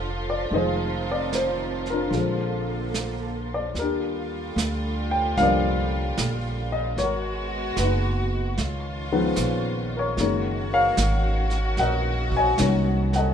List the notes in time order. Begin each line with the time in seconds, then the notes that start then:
Already playing: F1 D3 F3 A3 A#3 C4 F4 A4 D5 F5
0.30 D5
0.51 F1 D#3 F3 G#3 C4 D#5, brush sweep
0.55 C4 G#4 C5
1.12 D5
1.33 C5, snare, hi-hat pedal
1.86 snare
1.90 D4 F4 A#4
2.07 A#1 D3
2.11 D3 F3 G#3 A#3, brush sweep, snare
2.18 C4
2.94 snare, hi-hat pedal
3.54 D5
3.74 D#2 D3 G3 F4, brush sweep, snare
3.79 D4 G4 A#4
4.56 D2, snare, hi-hat pedal
5.11 G5
5.37 C2 D3 F3 G3 A#3 F5, brush sweep, snare
5.42 A#4 D5
6.17 A#1, snare, hi-hat pedal
6.72 D#5
6.96 G#1 G#3 B3 F#4 C#5, brush sweep, snare
7.03 F#4 A#4
7.77 F#1 B4, snare, hi-hat pedal
7.84 D#4 F#4
8.56 C#2 D#3 C#4 F4, brush sweep, snare
9.12 D#3 F3 G#3 B3
9.36 A#1, snare, hi-hat pedal
9.97 A#4 C#5
10.17 F#1 D#3 G#3 A#3 C#4 F#4, brush sweep, snare
10.73 A#4 C#5 F5
10.97 G#1, snare, hi-hat pedal
11.50 snare
11.77 A#1 A#4 D#5 F#5, brush sweep, snare
12.32 kick
12.37 C#5 D#5 G#5
12.58 C2 D#3 F#3 A#3 C#4, snare, hi-hat pedal
13.13 F#5, snare
13.17 A4 D#5